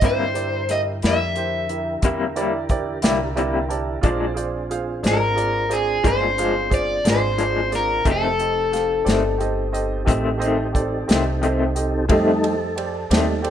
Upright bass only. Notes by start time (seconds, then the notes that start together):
0.01 G2
1.04 F2
2.02 E2
3.03 C2
4.03 A#1
5.03 G#1
6.04 G1
7.05 G#1
8.05 F1
9.06 G1
10.07 A1
11.09 C2
12.09 F2
13.11 D#2